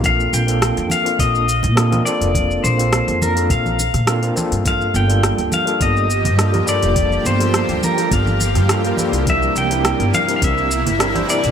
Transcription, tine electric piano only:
X:1
M:4/4
L:1/16
Q:1/4=104
K:Bb
V:1 name="Tine electric piano"
[B,CDA]3 [B,CDFA]4 [B,CDFA]3 z2 [B,CDFA] [B,CDFB] [B,CDFA]2 | [B,CDFA]3 [B,CDFA]4 [B,CDFA]3 z2 [B,CDFA] [B,CDFB] [B,CDFA]2 | [G,B,DFA]3 [G,B,DFA]4 [G,B,DFA]3 z2 [G,B,DFA] [G,B,DFB] [G,B,DFA]2 | [G,B,DFA]3 [G,B,DFA]4 [G,B,DFA]3 z2 [G,B,DFA] [G,B,DFB] [G,B,DFA]2 |
[G,CD=EB]3 [G,CDEB]4 [G,CDEB]3 z2 [G,CDEB] [G,CDEc] [G,CDEB]2 |]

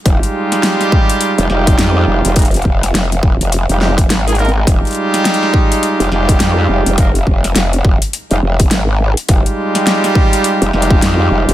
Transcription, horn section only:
X:1
M:4/4
L:1/16
Q:"Swing 16ths" 1/4=104
K:Fm
V:1 name="Horn section"
[G,A,EFG]8- [G,A,EFG]2 [G,A,EFG]6 | [A,B,EFB] z8 [G,A,EFG] [G,A,EFG] z2 [A,EFA] [A,B,EFB] z | [G,A,EFG]8- [G,A,EFG]2 [G,A,EFG]6 | [A,B,EFB] z8 [G,A,EFG] z6 |
[G,A,EFG]8- [G,A,EFG]2 [G,A,EFG]6 |]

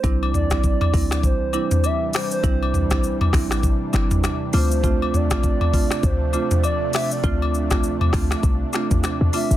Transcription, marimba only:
X:1
M:4/4
L:1/16
Q:"Swing 16ths" 1/4=100
K:C
V:1 name="Marimba"
[G,CDE] z2 [G,CDE]3 [G,CDE]2 z2 [G,CDE] z4 z | [G,CDE] z2 [G,CDE]3 [G,CDE]2 z2 [G,CDE] z3 [A,CDF]2 | [A,CDF] z2 [A,CDF]3 [A,CDF]2 z2 [A,CDF] z4 z | [A,CDF] z2 [A,CDF]3 [A,CDF]2 z2 [A,CDF] z3 [A,CDF]2 |]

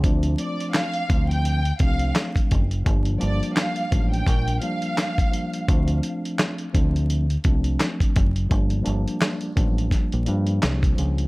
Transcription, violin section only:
X:1
M:4/4
L:1/16
Q:"Swing 16ths" 1/4=85
K:Dm
V:1 name="Violin section"
z2 d2 f3 g3 f2 z4 | z2 d2 f3 g3 f6 | z16 | z16 |]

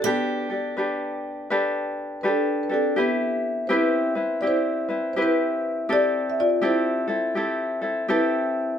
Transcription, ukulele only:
X:1
M:4/4
L:1/8
Q:"Swing" 1/4=82
K:G
V:1 name="Ukulele"
[DGAB] [DGA] [DGAB]2 [DGAB]2 [DGAB] [DGA] | [K:C] [EGB]2 [CEGB] [CEB] [CEG] [CEB] [CEGB]2 | [CGA]2 [CEGA] [CEA] [CEGA] [CEA] [CEGA]2 |]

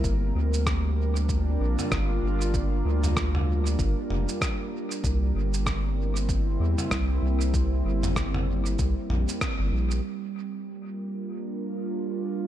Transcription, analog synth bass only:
X:1
M:4/4
L:1/16
Q:"Swing 16ths" 1/4=96
K:Gdor
V:1 name="Analog synth bass" clef=bass
G,,,2 D,,8 B,,, z G,,,2 G,,,2- | G,,,2 D,,6 G,,, z F,,, z4 z | C,,2 G,,,8 E,, z C,,2 C,,2- | C,,2 G,,,6 C,, z B,,, z2 G,,, B,,,2 |
z16 |]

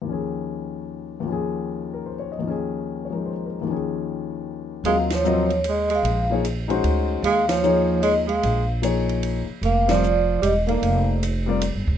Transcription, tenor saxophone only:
X:1
M:3/4
L:1/8
Q:"Swing" 1/4=150
K:Fphr
V:1 name="Tenor saxophone" clef=bass
z6 | z6 | z6 | z6 |
A, F,3 A, A,- | A, z4 z | A, F,3 A, A,- | A, z4 z |
B, F,3 =G, B,- | B, z4 z |]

